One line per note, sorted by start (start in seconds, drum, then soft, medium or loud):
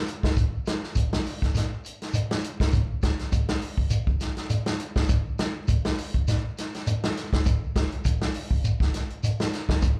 0.07 closed hi-hat soft
0.07 shekere soft
0.23 kick medium
0.23 snare medium
0.36 kick medium
0.36 closed hi-hat medium
0.36 shekere medium
0.66 snare medium
0.66 closed hi-hat medium
0.66 shekere soft
0.83 snare soft
0.95 kick medium
0.95 closed hi-hat medium
0.95 shekere medium
1.13 snare medium
1.13 closed hi-hat soft
1.25 open hi-hat medium
1.25 shekere soft
1.42 kick medium
1.42 snare soft
1.42 closed hi-hat soft
1.55 snare soft
1.55 closed hi-hat medium
1.55 shekere medium
1.84 closed hi-hat medium
1.84 shekere soft
2.02 snare soft
2.02 closed hi-hat soft
2.13 closed hi-hat medium
2.13 shekere medium
2.31 snare medium
2.31 closed hi-hat soft
2.43 closed hi-hat medium
2.43 shekere soft
2.60 kick medium
2.60 snare medium
2.60 closed hi-hat soft
2.73 kick loud
2.73 closed hi-hat medium
2.73 shekere medium
3.02 kick medium
3.02 snare medium
3.02 closed hi-hat medium
3.02 shekere soft
3.19 snare soft
3.19 closed hi-hat soft
3.32 kick medium
3.32 closed hi-hat medium
3.32 shekere medium
3.48 snare medium
3.48 closed hi-hat soft
3.61 open hi-hat medium
3.61 shekere soft
3.78 kick medium
3.90 closed hi-hat medium
3.90 shekere medium
4.07 kick medium
4.20 snare soft
4.20 closed hi-hat soft
4.20 shekere soft
4.37 snare soft
4.37 closed hi-hat soft
4.50 closed hi-hat medium
4.50 shekere medium
4.66 snare medium
4.66 closed hi-hat soft
4.80 closed hi-hat soft
4.80 shekere soft
4.96 kick medium
4.96 snare medium
5.09 kick medium
5.09 closed hi-hat medium
5.09 shekere medium
5.39 snare medium
5.39 closed hi-hat soft
5.39 shekere soft
5.68 kick medium
5.68 closed hi-hat medium
5.68 shekere medium
5.85 snare medium
5.85 closed hi-hat soft
5.98 open hi-hat medium
5.98 shekere soft
6.14 kick medium
6.14 closed hi-hat soft
6.28 snare soft
6.28 closed hi-hat medium
6.28 shekere medium
6.58 snare soft
6.58 closed hi-hat medium
6.58 shekere soft
6.74 snare soft
6.74 closed hi-hat soft
6.87 closed hi-hat medium
6.87 shekere medium
7.03 snare medium
7.03 closed hi-hat soft
7.17 snare soft
7.17 closed hi-hat soft
7.17 shekere soft
7.33 kick medium
7.33 snare medium
7.33 closed hi-hat soft
7.46 kick medium
7.46 closed hi-hat medium
7.46 shekere medium
7.76 kick medium
7.76 snare medium
7.76 closed hi-hat soft
7.76 shekere soft
7.92 closed hi-hat soft
8.05 kick medium
8.05 closed hi-hat medium
8.05 shekere medium
8.21 snare medium
8.21 closed hi-hat soft
8.34 open hi-hat medium
8.34 shekere soft
8.51 kick medium
8.64 closed hi-hat medium
8.64 shekere medium
8.80 kick medium
8.80 snare soft
8.94 snare soft
8.94 closed hi-hat soft
8.94 shekere soft
9.10 closed hi-hat soft
9.23 closed hi-hat medium
9.23 shekere medium
9.40 snare medium
9.40 closed hi-hat soft
9.53 snare soft
9.53 closed hi-hat soft
9.53 shekere soft
9.69 kick medium
9.69 snare medium
9.82 kick loud
9.82 closed hi-hat medium
9.82 shekere medium